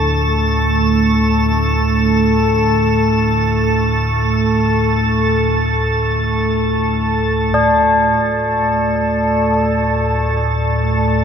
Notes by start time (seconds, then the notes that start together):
Already playing: D2 A2 A3 A4
7.54 D2 A2 A3 D4 A4